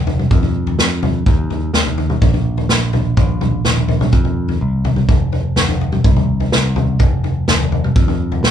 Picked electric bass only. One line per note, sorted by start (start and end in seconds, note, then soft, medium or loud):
0.00 0.27 F1 loud
0.31 0.75 F2 medium
0.79 1.22 F2 medium
1.26 1.70 D#2 medium
1.74 2.18 D#2 medium
2.22 2.66 A#1 medium
2.70 3.14 A#1 medium
3.17 3.61 A#1 medium
3.66 4.09 A#1 medium
4.13 4.57 F2 medium
4.61 5.05 C2 medium
5.09 5.53 F1 medium
5.56 6.00 F1 loud
6.05 6.48 C2 medium
6.52 6.96 C2 medium
7.00 7.44 F1 medium
7.48 7.92 F1 loud
7.96 8.40 F2 medium
8.43 8.51 A#1 medium